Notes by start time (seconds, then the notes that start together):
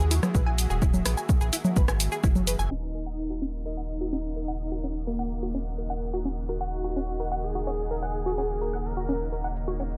Already playing: D#2 D#3 A#3 F#4 G#4 E5
0.11 E4, open hi-hat, shaker
0.23 cross-stick, low conga, shaker
0.35 A#1 B4, kick, shaker
0.46 G#5
0.58 open hi-hat, shaker
0.70 D#1 G#4, shaker
0.82 E4, kick, shaker
0.94 low conga, shaker
1.06 A#1 B4, cross-stick, open hi-hat, shaker
1.17 G#5, shaker
1.29 kick, shaker
1.41 A#1 G#4, shaker
1.53 E4, open hi-hat, shaker
1.65 low conga, shaker
1.76 G#1 B4, kick, shaker
1.88 G#5, cross-stick, shaker
2.00 open hi-hat, shaker
2.12 G#4, shaker
2.24 F#1 E4, kick, shaker
2.36 low conga, shaker
2.47 B4, open hi-hat, shaker
2.59 F#1 G#5, shaker
2.71 D#1 C#3 A#3 C#4 D#4 A#4 D#5 F#5, shaker
2.95 A#4
3.06 F#5
3.30 F#4
3.42 C#4, shaker
3.65 D#4 A#4
3.77 F#5
3.89 shaker
4.01 F#4
4.13 C#4, shaker
4.36 A#4, shaker
4.48 F#5, shaker
4.60 shaker
4.72 F#4
4.84 C#4, shaker
4.95 shaker
5.07 A#3 A#4, shaker
5.19 F#5, shaker
5.31 shaker
5.43 F#4
5.54 C#4, shaker
5.78 A#4, shaker
5.90 F#5, shaker
6.02 shaker
6.13 F#4
6.25 C#4, shaker
6.37 shaker
6.49 F#4 A#4, shaker
6.61 F#5, shaker
6.72 shaker
6.84 F#4, shaker
6.96 C#4, shaker
7.08 shaker
7.20 A#4, shaker
7.32 F#5, shaker
7.43 G#4, shaker
7.55 F#4
7.67 C#4, shaker
7.79 shaker
7.91 A#4, shaker
8.03 F#5
8.14 shaker
8.26 F#4, shaker
8.38 C#4, shaker
8.50 shaker
8.61 A#4, shaker
8.73 F#5, shaker
8.85 A#4, shaker
8.97 F#4, shaker
9.09 C#4, shaker
9.21 shaker
9.32 A#4, shaker
9.44 F#5
9.56 shaker
9.68 F#4, shaker
9.80 C#4, shaker
9.91 shaker